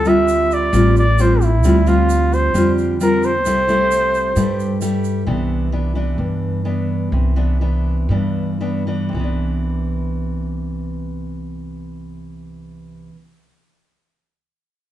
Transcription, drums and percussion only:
0.05 shaker
0.28 shaker
0.51 shaker
0.73 shaker
0.96 shaker
1.19 shaker
1.41 shaker
1.64 shaker
1.87 shaker
2.10 shaker
2.33 shaker
2.55 shaker
2.78 shaker
3.01 shaker
3.23 shaker
3.46 shaker
3.69 shaker
3.91 shaker
4.14 shaker
4.36 shaker
4.60 shaker
4.81 shaker
5.04 shaker

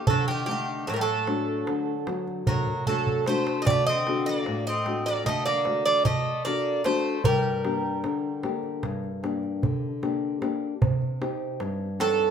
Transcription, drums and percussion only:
0.07 darbuka dum
0.27 darbuka tek
0.88 darbuka tek
1.27 darbuka tek
1.48 darbuka tek
1.67 darbuka tek
2.07 darbuka tek
2.27 darbuka tek
2.47 darbuka dum
2.67 darbuka dum
2.87 darbuka dum
3.07 darbuka dum
3.26 darbuka tek
3.47 darbuka tek
3.67 darbuka dum
3.87 darbuka tek
4.07 darbuka tek
4.46 darbuka tek
4.86 darbuka tek
5.06 darbuka tek
5.26 darbuka tek, darbuka dum
5.46 darbuka tek
5.65 darbuka tek
5.86 darbuka tek
6.05 darbuka dum
6.45 darbuka tek
6.85 darbuka tek
7.24 darbuka dum
7.45 darbuka tek
7.65 darbuka tek
8.04 darbuka tek
8.43 darbuka tek
8.63 darbuka tek
8.83 darbuka tek, darbuka dum
9.04 darbuka tek
9.24 darbuka tek
9.43 darbuka tek
9.63 darbuka dum
10.03 darbuka tek
10.42 darbuka tek
10.82 darbuka dum
11.02 darbuka tek
11.22 darbuka tek
11.60 darbuka tek
12.00 darbuka tek
12.20 darbuka tek

